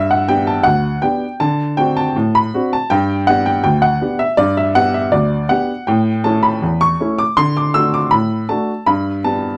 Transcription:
0.00 0.23 G2 medium
0.11 0.28 F#5 medium
0.28 0.49 B3 medium
0.28 0.49 D4 soft
0.28 0.49 G4 medium
0.28 0.47 G5 medium
0.47 0.65 A5 medium
0.63 0.96 D2 medium
0.63 1.02 F#5 loud
1.02 1.23 B3 soft
1.02 1.24 D4 medium
1.02 1.24 G4 soft
1.02 1.39 G5 medium
1.40 1.72 D3 medium
1.40 1.77 A5 medium
1.77 1.98 C4 medium
1.77 1.98 D4 soft
1.77 1.99 F#4 medium
1.77 1.96 G5 medium
1.97 2.33 A5 medium
2.16 2.47 A2 medium
2.35 2.71 B5 medium
2.54 2.74 C4 soft
2.54 2.74 D4 soft
2.54 2.74 F#4 medium
2.73 2.90 A5 medium
2.90 3.22 G2 medium
2.90 3.27 G5 medium
3.27 3.48 B3 medium
3.27 3.48 D4 medium
3.27 3.49 G4 soft
3.27 3.45 F#5 loud
3.46 3.62 G5 medium
3.64 3.95 D2 medium
3.64 3.82 G5 medium
3.82 4.19 F#5 medium
4.01 4.22 B3 soft
4.01 4.22 D4 soft
4.01 4.22 G4 medium
4.19 4.38 E5 medium
4.37 4.70 G2 medium
4.37 4.56 D5 loud
4.57 4.76 E5 medium
4.75 4.96 B3 medium
4.75 4.96 D4 soft
4.75 4.96 G4 medium
4.75 4.94 F#5 loud
4.94 5.13 E5 medium
5.12 5.44 D2 medium
5.12 5.49 D5 medium
5.49 5.70 B3 soft
5.49 5.71 D4 soft
5.49 5.71 G4 medium
5.49 5.87 F#5 medium
5.87 6.19 A2 medium
5.87 6.24 G5 medium
6.24 6.45 A3 soft
6.24 6.45 C#4 medium
6.24 6.46 E4 medium
6.24 6.43 A5 medium
6.43 6.80 B5 medium
6.62 6.93 E2 medium
6.81 7.18 C#6 loud
7.00 7.21 A3 soft
7.00 7.21 C#4 soft
7.00 7.21 E4 medium
7.18 7.37 D6 medium
7.37 7.69 D3 medium
7.37 7.55 C6 loud
7.57 7.74 D6 medium
7.74 7.95 A3 soft
7.74 7.96 D4 medium
7.74 7.96 F#4 medium
7.74 7.92 E6 loud
7.94 8.12 D6 medium
8.11 8.43 A2 medium
8.11 8.48 B5 medium
8.49 8.70 A3 soft
8.49 8.70 D4 medium
8.49 8.70 F#4 soft
8.49 8.86 A5 medium
8.86 9.18 G2 medium
8.86 9.24 B5 medium
9.24 9.45 B3 soft
9.24 9.46 D4 soft
9.24 9.46 G4 soft
9.24 9.57 A5 medium

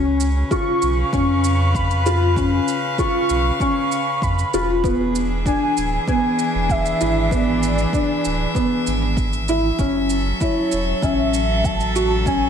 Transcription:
0.00 0.44 C#2 loud
0.00 4.85 C#3 medium
0.00 0.21 C#4 medium
0.00 4.85 C#4 medium
0.20 shaker medium
0.46 6.31 B4 medium
0.51 0.83 F4 medium
0.51 1.10 C#6 loud
0.51 kick loud
0.51 shaker soft
0.82 1.04 B1 medium
0.82 shaker medium
0.99 4.84 F5 medium
1.13 2.60 F2 medium
1.13 1.45 C#4 medium
1.13 1.77 C#6 loud
1.13 kick loud
1.13 shaker soft
1.44 shaker medium
1.75 2.37 B5 medium
1.75 kick loud
1.75 shaker soft
1.91 shaker soft
2.06 2.22 F4 medium
2.06 shaker medium
2.36 2.69 C#4 medium
2.36 kick loud
2.36 shaker soft
2.68 shaker medium
2.98 3.31 F4 medium
2.98 3.57 C#6 loud
2.98 kick medium
2.98 shaker soft
3.30 3.51 B1 medium
3.30 shaker medium
3.60 3.93 C#4 loud
3.60 4.24 C#6 loud
3.60 kick medium
3.60 shaker soft
3.92 shaker medium
4.22 4.44 F2 medium
4.22 4.84 B5 medium
4.22 kick loud
4.22 shaker soft
4.39 shaker soft
4.53 5.54 E1 medium
4.53 4.70 F4 medium
4.53 shaker medium
4.84 9.80 E3 medium
4.84 5.16 B3 loud
4.84 kick medium
4.84 shaker soft
4.95 9.79 G#4 medium
5.04 9.79 D4 medium
5.16 shaker medium
5.32 12.49 E5 medium
5.46 5.78 D4 medium
5.46 6.04 G#5 loud
5.46 kick loud
5.46 shaker soft
5.77 5.99 D1 loud
5.77 shaker medium
6.08 6.40 B3 medium
6.08 6.72 G#5 loud
6.08 kick loud
6.08 shaker soft
6.39 shaker medium
6.55 6.93 E1 loud
6.69 7.34 E5 loud
6.69 kick loud
6.69 shaker soft
6.86 shaker soft
7.01 7.86 G#1 medium
7.01 7.17 E4 medium
7.01 shaker medium
7.31 7.64 B3 medium
7.31 9.18 D5 loud
7.31 kick loud
7.31 shaker soft
7.63 shaker medium
7.78 shaker soft
7.93 8.25 D4 medium
7.93 kick loud
7.93 shaker soft
8.25 8.46 D1 medium
8.25 shaker medium
8.55 8.88 B3 medium
8.55 kick medium
8.55 shaker soft
8.87 9.72 G#1 medium
8.87 shaker medium
9.17 kick loud
9.17 shaker soft
9.33 shaker soft
9.48 9.65 E4 medium
9.48 shaker medium
9.79 10.33 F#1 loud
9.79 12.49 F#3 medium
9.79 10.11 C#4 medium
9.79 kick loud
9.79 shaker soft
10.08 12.49 A4 medium
10.08 shaker medium
10.18 12.49 C#4 medium
10.41 10.73 E4 medium
10.41 11.05 C#5 medium
10.41 kick loud
10.41 shaker soft
10.72 10.94 E1 medium
10.72 shaker medium
11.02 12.49 A1 medium
11.02 11.35 C#4 medium
11.02 11.66 E5 loud
11.02 kick loud
11.02 shaker soft
11.34 shaker medium
11.64 12.26 A5 loud
11.64 kick loud
11.64 shaker soft
11.80 shaker soft
11.96 12.12 F#4 medium
11.96 shaker medium
12.26 12.49 C#4 medium
12.26 12.49 G#5 loud
12.26 kick loud
12.26 shaker soft

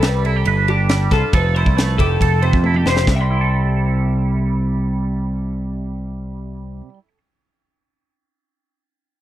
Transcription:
0.00 0.43 C2 medium
0.00 0.48 C3 medium
0.00 0.90 G3 soft
0.00 0.25 E4 medium
0.00 0.26 G4 soft
0.00 0.47 A4 medium
0.00 0.25 B4 medium
0.00 snare medium
0.00 ride medium
0.25 0.36 E4 soft
0.25 0.69 A4 medium
0.25 ride soft
0.36 0.47 G4 soft
0.45 1.08 G1 medium
0.45 1.33 G2 medium
0.45 1.31 B4 medium
0.45 ride medium
0.68 1.32 D4 medium
0.68 1.12 G4 medium
0.68 ride soft
0.89 1.76 G3 medium
0.89 snare medium
0.89 ride medium
1.11 1.22 C2 medium
1.11 1.32 F4 soft
1.11 1.34 A4 medium
1.11 kick medium
1.11 snare soft
1.11 ride medium
1.33 1.64 F1 medium
1.33 3.05 F3 medium
1.33 2.21 A4 medium
1.33 1.55 B4 medium
1.33 kick medium
1.33 ride medium
1.55 2.65 E4 soft
1.55 1.76 C5 medium
1.55 ride medium
1.66 1.97 C2 medium
1.66 kick medium
1.76 3.05 A3 soft
1.76 1.98 B4 medium
1.76 snare medium
1.76 ride medium
1.98 2.19 F1 medium
1.98 2.65 G4 soft
1.98 2.42 A4 medium
1.98 kick medium
1.98 ride medium
2.20 2.51 F1 medium
2.20 2.86 A4 soft
2.20 kick medium
2.20 ride medium
2.42 3.05 C3 medium
2.42 2.63 C5 medium
2.42 ride soft
2.53 2.87 F2 medium
2.53 kick medium
2.63 2.76 E4 soft
2.63 2.85 A4 medium
2.63 high tom soft
2.74 3.08 G4 soft
2.74 mid tom soft
2.86 3.06 F1 medium
2.86 3.08 C5 medium
2.86 3.06 C5 soft
2.86 snare medium
2.96 snare medium
3.07 6.80 C2 medium
3.07 6.88 C3 medium
3.07 kick medium
3.07 snare medium
3.12 3.20 E5 medium
3.16 6.89 G5 medium
3.21 6.98 G3 medium
3.21 6.94 C6 medium
3.31 7.08 E4 soft
3.41 7.18 A4 medium

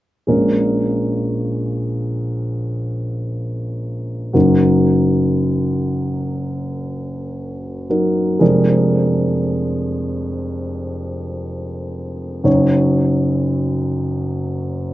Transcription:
0.27 4.31 A#1 soft
0.27 4.31 A#2 soft
0.27 4.31 G#3 soft
0.27 4.31 C#4 soft
0.27 4.32 A#4 soft
4.33 8.36 F#1 soft
4.33 8.36 F#2 soft
4.33 7.85 F#3 soft
4.33 7.86 D#4 soft
4.33 7.86 A#4 soft
7.90 8.40 F#3 soft
7.90 8.41 D#4 soft
7.90 8.40 A#4 soft
8.39 12.42 F1 soft
8.39 12.42 F2 soft
8.39 12.41 G#3 soft
8.39 12.42 D4 soft
8.39 12.43 A#4 medium
12.44 14.94 F#1 soft
12.44 14.94 F#2 soft
12.44 14.94 F#3 soft
12.44 14.94 D#4 soft
12.44 14.94 C#5 soft

